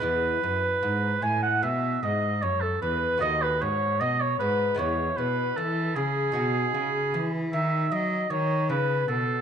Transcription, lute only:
\new Staff \with { instrumentName = "Lute" } { \clef bass \time 4/4 \key e \major \tempo 4 = 76 << { <gis b e'>1 | <a b fis'>2 <gis b e'>2 | <dis' fis'>1 | } \\ { e,8 fis,8 gis,8 a,8 b,8 gis,8 fis,8 e,8 | dis,8 gis,8 b,8 gis,8 e,8 b,8 e8 cis8 | b,8 cis8 e8 dis8 fis8 dis8 cis8 b,8 | } >> }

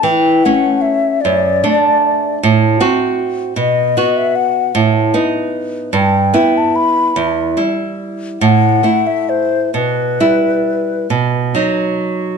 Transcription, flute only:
\new Staff \with { instrumentName = "Flute" } { \time 6/8 \key d \major \tempo 4. = 49 g''8 fis''8 e''8 d''4. | \key e \minor r4. dis''8. e''16 fis''8 | r4. g''8. a''16 b''8 | r4. fis''8. e''16 c''8 |
b'4. r4. | }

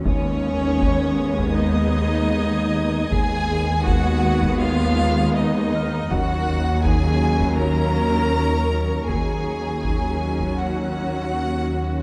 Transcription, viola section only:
\new Staff \with { instrumentName = "Viola section" } { \time 4/4 \key ees \minor \tempo 4 = 80 <aes ces'>1 | <aes ces'>1 | <ges des'>1 | <ges des'>1 | }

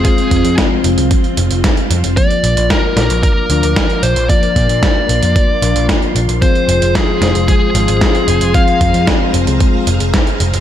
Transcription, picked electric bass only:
\new Staff \with { instrumentName = "Picked electric bass" } { \clef bass \time 4/4 \key bes \mixolydian \tempo 4 = 113 r8 f,16 f,16 r8 f,,16 c,16 r8 f,,16 f,,16 r8 f,16 f,,16 | r8 bes,,16 bes,,16 r8 bes,,16 bes,,16 r8 d,16 d,16 r8 bes,,16 bes,,16 | r8 bes,16 bes,16 r8 bes,,16 f,16 r8 bes,,16 bes,,16 r8 bes,,16 bes,,16 | r8 f,,16 f,,16 r8 f,,16 f,,16 r8 aes,,16 aes,,16 r8 f,,16 f,,16 |
r8 f,16 f,16 r8 f,,16 c,16 r8 f,,16 f,,16 r8 f,,16 f,,16 | }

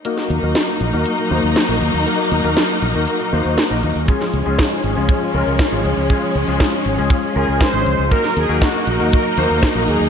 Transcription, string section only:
\new Staff \with { instrumentName = "String section" } { \time 4/4 \key ees \dorian \tempo 4 = 119 <ges bes ees'>1~ | <ges bes ees'>1 | <f aes des'>1~ | <f aes des'>1 |
<ges bes ees'>1 | }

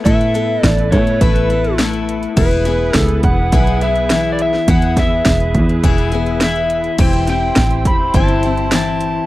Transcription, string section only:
\new Staff \with { instrumentName = "String section" } { \time 4/4 \key e \mixolydian \tempo 4 = 104 <e' a' b'>1 | <b e' gis' b'>1 | <e' gis' b'>1 | <c' e' g' c''>1 | }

